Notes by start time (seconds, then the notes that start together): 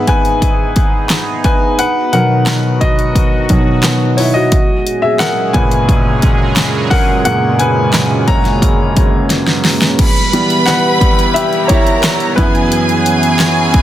Already playing: G#2 D#3 B3 D#4 G#4 B4 D#5 E5 F#5
0.07 B4 G#5, kick, closed hi-hat
0.25 closed hi-hat
0.42 kick, closed hi-hat
0.76 kick, closed hi-hat
1.10 snare, clap, closed hi-hat
1.44 B4 G#5, kick, closed hi-hat
1.78 F#4 B4 F#5, closed hi-hat
2.12 B2 D#3 F#3 A#4 F#5, closed hi-hat
2.46 snare, clap, closed hi-hat
2.81 F#4 D#5, kick, closed hi-hat
2.99 closed hi-hat
3.15 kick, closed hi-hat
3.49 B2 D#3 F#3, kick, closed hi-hat
3.83 snare, clap, closed hi-hat
4.17 E4 C#5, open hi-hat
4.34 F#4 D#5
4.52 A#2 F#3 G#3 C#4 G#4, kick, closed hi-hat
4.87 closed hi-hat
5.02 G#4 E5
5.19 A#4 F#5, snare, clap, closed hi-hat
5.53 F#2 A#2 C#3 B4 G#5, kick, closed hi-hat
5.71 closed hi-hat
5.89 kick, closed hi-hat
6.22 kick, closed hi-hat
6.56 snare, clap, closed hi-hat
6.90 A#4 F#5, kick, open hi-hat
7.25 F#2 A#2 C#3 A#3 A#4 F#5, closed hi-hat
7.59 B4 G#5, closed hi-hat
7.93 snare, clap, closed hi-hat
8.28 F#2 C#3 A#3 C#5 A#5, kick, closed hi-hat
8.45 snare, closed hi-hat
8.62 kick, closed hi-hat
8.97 kick, closed hi-hat
9.30 snare, closed hi-hat
9.48 snare
9.65 snare, open hi-hat
9.82 snare, closed hi-hat
9.98 G3 B3 E4 B4 B5, kick, closed hi-hat, crash
10.16 closed hi-hat
10.33 E3 G3 B3, closed hi-hat
10.50 closed hi-hat
10.66 B4 F#5, snare, clap, closed hi-hat
11.01 kick, closed hi-hat
11.19 closed hi-hat
11.34 G4 E5, closed hi-hat
11.53 closed hi-hat
11.68 E4 A#4 C#5 A#5, kick, closed hi-hat
11.87 closed hi-hat
12.03 snare, clap, closed hi-hat
12.20 closed hi-hat
12.36 F#2 E3 F#3 B3 C#4 E4 F#4 G#4 B4 G#5, kick, closed hi-hat
12.55 closed hi-hat
12.72 closed hi-hat
12.89 closed hi-hat
13.06 closed hi-hat
13.23 closed hi-hat
13.39 snare, clap, closed hi-hat
13.74 kick, closed hi-hat